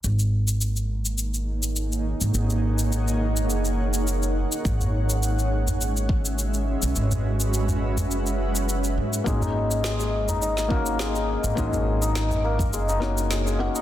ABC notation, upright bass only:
X:1
M:4/4
L:1/16
Q:"Swing 16ths" 1/4=104
K:D#phr
V:1 name="Upright bass" clef=bass
G,,,12- G,,,2 z G,,, | G,,,8 F,,,6 z2 | G,,,12- G,,,2 z B,,, | G,,,8 F,,,6 G,, z |
G,,,12- G,,,2 z G,,, | G,,,8 F,,,6 z2 |]